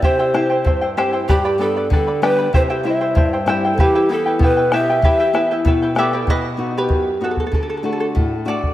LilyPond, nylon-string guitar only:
\new Staff \with { instrumentName = "Nylon-string guitar" } { \time 2/4 \key e \minor \tempo 4 = 96 c8 <c' e' g'>8 g,8 <c' e' g'>8 | g,8 <g b d'>8 d8 <g b d'>8 | c8 <g c' e'>8 g,8 <g c' e'>8 | e8 <b e' g'>8 b,8 <b e' g'>8 |
e8 <b e' g'>8 b,8 <b e' g'>8 | b,8 <b dis' fis'>8 fis,8 <b dis' fis'>8 | d8 <a d' fis'>8 a,8 <a d' fis'>8 | }